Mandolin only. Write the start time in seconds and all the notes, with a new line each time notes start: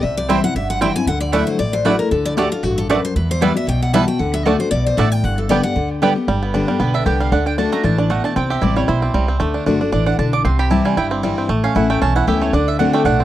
0.29 C4 E4 C5 G5
0.81 C4 E4 C5 G5
1.32 A3 E4 D5 F#5
1.85 A3 E4 D5 F#5
2.37 A3 F#4 D5 A5
2.89 A3 F#4 D5 A5
3.41 G3 E4 B4 E5
3.93 G3 E4 B4 E5
4.45 A3 F#4 D5 A5
4.98 A3 F#4 D5 A5
5.50 B3 G4 D5 G5
6.02 B3 G4 D5 G5
6.80 B4
6.95 E5
7.06 G5
7.21 F5
7.32 F#5
7.47 G5
7.58 A5
7.73 A#5
7.85 A5
7.99 D5
8.11 F#5
8.25 A5
8.37 G5
8.51 E5
8.63 D5
8.77 C#5
8.89 C5
9.92 D5
10.06 F#5
10.19 A5
10.33 D6
10.45 C6
10.59 B5
10.71 A5
10.85 G#5
10.98 G5
11.64 F5
11.76 F#5
11.90 G5
12.02 A5
12.16 F#5
12.28 E5
12.42 C#5
12.54 D5
12.68 E5
12.79 F#5
12.93 G5
13.05 F#5